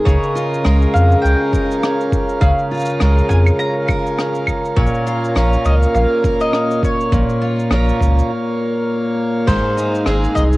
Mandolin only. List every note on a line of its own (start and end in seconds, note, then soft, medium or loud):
0.05 0.61 C#5 loud
0.94 1.21 F5 loud
1.22 2.40 G5 loud
2.41 2.96 F5 medium
3.29 3.37 G#5 loud
3.59 4.80 A#5 loud
4.77 5.65 C#5 medium
5.65 5.73 D#5 medium
5.95 6.37 F5 medium
6.41 6.80 D#5 medium
6.84 8.27 C#5 medium
9.47 10.02 C5 loud
10.35 10.43 D#5 loud